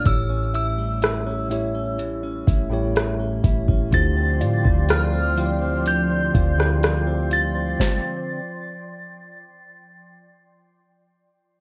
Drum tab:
HH |x-x-x-x-x-x-x-x-|x-x-x-x-x-x-x-x-|----------------|
SD |----r-------r---|----r------rr---|o---------------|
BD |o---------o---oo|o--o------o-----|o---------------|